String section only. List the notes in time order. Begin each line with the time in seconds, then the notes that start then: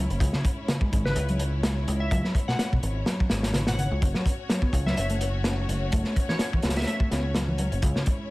Already playing: A3 C#4 E4 C#5
0.21 G#3 C#5
4.02 A3 C#4 F#4
7.83 G#3 E4